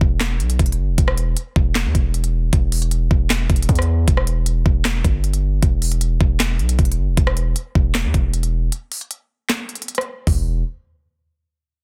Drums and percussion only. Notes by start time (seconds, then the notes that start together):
0.01 kick
0.21 snare, clap, closed hi-hat
0.40 closed hi-hat
0.50 closed hi-hat
0.59 kick, closed hi-hat
0.66 closed hi-hat
0.72 closed hi-hat
0.98 kick, closed hi-hat
1.08 cross-stick
1.18 closed hi-hat
1.37 closed hi-hat
1.56 kick
1.75 snare, clap, closed hi-hat
1.95 kick, closed hi-hat
2.14 closed hi-hat
2.24 closed hi-hat
2.53 kick, closed hi-hat
2.72 closed hi-hat, open hi-hat
2.82 closed hi-hat
2.91 closed hi-hat
3.11 kick
3.30 snare, clap, closed hi-hat
3.50 kick, closed hi-hat
3.56 closed hi-hat
3.62 closed hi-hat
3.69 kick, closed hi-hat
3.75 cross-stick, closed hi-hat
3.82 closed hi-hat
4.08 kick, closed hi-hat
4.17 cross-stick
4.27 closed hi-hat
4.46 closed hi-hat
4.66 kick
4.85 snare, clap, closed hi-hat
5.05 kick, closed hi-hat
5.24 closed hi-hat
5.33 closed hi-hat
5.63 kick, closed hi-hat
5.82 closed hi-hat, open hi-hat
5.92 closed hi-hat
6.01 closed hi-hat
6.21 kick
6.40 snare, clap, closed hi-hat
6.59 closed hi-hat
6.69 closed hi-hat
6.79 kick, closed hi-hat
6.85 closed hi-hat
6.92 closed hi-hat
7.17 kick, closed hi-hat
7.27 cross-stick
7.37 closed hi-hat
7.56 closed hi-hat
7.75 kick
7.95 snare, clap, closed hi-hat
8.14 kick, closed hi-hat
8.34 closed hi-hat
8.43 closed hi-hat
8.72 closed hi-hat
8.92 closed hi-hat, open hi-hat
9.01 closed hi-hat
9.11 closed hi-hat
9.50 snare, clap, closed hi-hat
9.69 closed hi-hat
9.75 closed hi-hat
9.82 closed hi-hat
9.88 closed hi-hat
9.95 cross-stick, closed hi-hat
10.01 closed hi-hat
10.27 kick, floor tom, open hi-hat